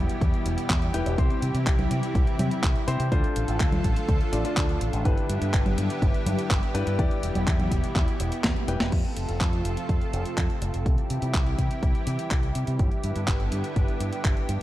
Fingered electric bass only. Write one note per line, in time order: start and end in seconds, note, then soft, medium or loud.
0.21 0.31 E2 medium
0.46 0.55 E1 medium
0.70 0.89 E2 loud
0.94 1.04 E1 medium
1.06 1.16 E1 loud
1.18 1.28 C2 loud
1.42 1.52 C3 medium
1.54 1.64 C3 medium
1.67 1.86 C2 medium
1.91 2.00 C3 medium
2.15 2.25 C2 loud
2.39 2.49 C3 loud
2.63 2.73 C2 medium
2.88 2.97 C3 medium
3.00 3.09 C3 medium
3.12 3.21 D2 loud
3.36 3.46 A1 medium
3.48 3.58 A1 medium
3.60 3.79 D2 medium
3.84 3.94 A1 medium
4.09 4.18 D2 medium
4.33 4.42 A1 loud
4.57 4.76 D2 medium
4.81 4.91 A1 medium
4.93 5.03 A1 medium
5.05 5.15 G1 loud
5.29 5.39 G2 medium
5.42 5.51 G2 medium
5.54 5.73 G1 medium
5.78 5.88 G2 medium
6.02 6.12 G1 loud
6.26 6.36 G2 loud
6.50 6.60 G1 medium
6.75 6.84 G2 medium
6.87 6.96 G2 medium
6.99 7.08 E2 loud
7.23 7.33 E1 medium
7.35 7.45 E1 medium
7.47 7.67 E2 medium
7.71 7.81 E1 medium
7.96 8.05 E2 medium
8.20 8.29 E1 loud
8.44 8.54 E2 medium
8.68 8.78 E1 medium
8.80 8.90 E1 loud
8.92 9.02 F2 loud
9.17 9.26 F1 medium
9.29 9.38 F1 medium
9.41 9.60 F2 medium
9.65 9.75 F1 medium
9.89 9.99 F2 medium
10.13 10.23 F1 loud
10.38 10.47 F2 medium
10.62 10.71 F1 medium
10.74 10.84 F1 medium
10.86 10.96 C2 loud
11.10 11.20 C3 medium
11.22 11.32 C3 medium
11.34 11.54 C2 medium
11.58 11.68 C3 medium
11.83 11.92 C2 medium
12.07 12.17 C3 medium
12.31 12.50 C2 medium
12.55 12.65 C3 medium
12.68 12.77 C3 medium
12.79 12.89 G1 loud
13.04 13.13 G2 medium
13.16 13.25 G2 medium
13.28 13.47 G1 medium
13.52 13.62 G2 medium
13.76 13.86 G1 loud
14.00 14.10 G2 loud
14.25 14.34 G1 medium
14.49 14.59 G2 medium